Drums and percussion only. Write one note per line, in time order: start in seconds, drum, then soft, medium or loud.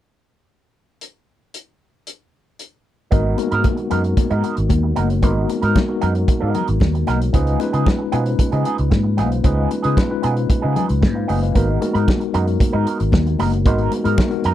1.01 closed hi-hat soft
1.54 closed hi-hat medium
2.07 closed hi-hat medium
2.59 closed hi-hat soft
3.12 kick loud
3.12 closed hi-hat medium
3.12 muted conga soft
3.38 closed hi-hat medium
3.38 muted conga medium
3.52 closed hi-hat soft
3.64 kick loud
3.64 closed hi-hat medium
3.64 high conga medium
3.77 closed hi-hat soft
3.91 closed hi-hat medium
4.04 closed hi-hat soft
4.17 kick loud
4.17 closed hi-hat medium
4.17 muted conga soft
4.31 closed hi-hat soft
4.44 closed hi-hat medium
4.44 muted conga soft
4.57 closed hi-hat soft
4.70 kick medium
4.70 closed hi-hat medium
4.70 high conga medium
4.96 closed hi-hat medium
4.96 high conga medium
5.10 closed hi-hat soft
5.23 kick loud
5.23 closed hi-hat medium
5.23 muted conga soft
5.49 closed hi-hat medium
5.49 muted conga medium
5.63 closed hi-hat soft
5.76 kick loud
5.76 snare medium
5.76 high conga medium
6.02 closed hi-hat medium
6.15 closed hi-hat soft
6.28 kick loud
6.28 closed hi-hat medium
6.28 muted conga soft
6.55 closed hi-hat medium
6.55 muted conga soft
6.55 low conga medium
6.68 closed hi-hat soft
6.80 kick loud
6.80 snare medium
6.80 high conga medium
6.95 closed hi-hat soft
7.07 snare soft
7.07 closed hi-hat medium
7.07 high conga medium
7.22 closed hi-hat soft
7.34 kick loud
7.34 closed hi-hat medium
7.34 muted conga soft
7.47 closed hi-hat soft
7.60 closed hi-hat medium
7.60 muted conga medium
7.74 closed hi-hat soft
7.86 kick loud
7.86 snare loud
7.86 high conga medium
8.12 closed hi-hat medium
8.26 closed hi-hat soft
8.39 kick loud
8.39 closed hi-hat medium
8.39 muted conga soft
8.52 closed hi-hat soft
8.65 closed hi-hat medium
8.65 muted conga soft
8.78 closed hi-hat soft
8.91 kick loud
8.91 snare loud
8.91 high conga medium
9.18 snare soft
9.18 closed hi-hat medium
9.18 high conga medium
9.32 closed hi-hat soft
9.44 kick loud
9.44 closed hi-hat medium
9.44 muted conga soft
9.71 closed hi-hat medium
9.71 muted conga medium
9.84 closed hi-hat soft
9.97 kick loud
9.97 snare medium
9.97 high conga medium
10.23 closed hi-hat medium
10.37 closed hi-hat soft
10.50 kick loud
10.50 closed hi-hat medium
10.50 muted conga soft
10.76 closed hi-hat medium
10.76 low conga medium
10.89 closed hi-hat medium
11.02 kick loud
11.02 snare loud
11.02 high conga medium
11.29 open hi-hat medium
11.29 high conga medium
11.43 closed hi-hat soft
11.55 kick loud
11.55 closed hi-hat medium
11.55 muted conga soft
11.82 closed hi-hat medium
11.82 muted conga medium
11.95 closed hi-hat soft
12.08 kick loud
12.08 snare medium
12.08 high conga medium
12.21 closed hi-hat soft
12.34 closed hi-hat medium
12.47 closed hi-hat soft
12.60 kick loud
12.60 closed hi-hat medium
12.60 muted conga medium
12.87 closed hi-hat medium
13.00 closed hi-hat soft
13.12 kick loud
13.12 snare loud
13.12 high conga medium
13.27 closed hi-hat soft
13.39 snare soft
13.39 open hi-hat medium
13.39 high conga medium
13.53 closed hi-hat soft
13.66 kick loud
13.66 closed hi-hat medium
13.66 muted conga soft
13.78 closed hi-hat soft
13.92 closed hi-hat medium
13.92 muted conga medium
14.05 closed hi-hat soft
14.18 kick loud
14.18 snare loud
14.18 high conga medium
14.31 closed hi-hat soft
14.44 closed hi-hat medium